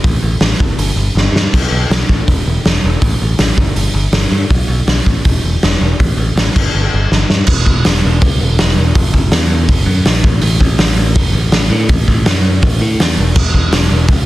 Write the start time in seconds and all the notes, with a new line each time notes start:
0.04 A1, kick, open hi-hat
0.22 A1
0.41 A1, snare, open hi-hat
0.60 G1, kick
0.78 G1, open hi-hat
0.96 G1
1.15 G1, snare
1.32 G2, snare
1.53 B1, kick, open hi-hat, crash
1.71 B1
1.90 B1, snare, open hi-hat
2.09 A1, kick
2.28 E1, kick, open hi-hat
2.46 E1
2.65 E1, snare, open hi-hat
2.84 E1
3.02 A1, kick, open hi-hat
3.22 A1
3.39 A1, snare, open hi-hat
3.57 G1, kick
3.76 G1, open hi-hat
3.94 G1
4.12 G1, snare, open hi-hat
4.31 G2
4.50 B1, kick, open hi-hat
4.68 B1
4.87 B1, snare, open hi-hat
5.06 A1, kick
5.25 E1, kick, open hi-hat
5.43 E1
5.63 E1, snare, open hi-hat
5.81 E1
6.00 A1, kick, open hi-hat
6.17 A1
6.36 A1, snare, open hi-hat
6.56 G1, kick, crash
6.75 G1
6.94 G1
7.11 G1, snare
7.30 G2, snare
7.47 E1, kick, crash
7.66 E1, kick
7.85 E1, snare, open hi-hat
8.05 E1
8.22 C#2, kick, open hi-hat
8.40 E1
8.59 E1, snare, open hi-hat
8.78 E1
8.95 F#1, kick, open hi-hat
9.13 F#1, kick
9.32 E2, snare, open hi-hat
9.68 F#1, kick, open hi-hat
9.86 F#2
10.05 A#1, snare, open hi-hat
10.23 A1, kick
10.41 A1, open hi-hat
10.60 A1, kick
10.78 A1, snare, open hi-hat
10.96 A1
11.15 kick, open hi-hat
11.33 A1
11.52 A1, snare, open hi-hat
11.70 A2
11.89 A1, kick, open hi-hat
12.08 A1, kick
12.26 F#2, snare, open hi-hat
12.62 A1, kick, open hi-hat
12.81 A2
12.99 E2, snare, open hi-hat
13.18 E1
13.36 E1, kick, crash
13.54 E1, kick
13.71 E1, snare, open hi-hat
13.92 E1
14.08 C#2, kick, open hi-hat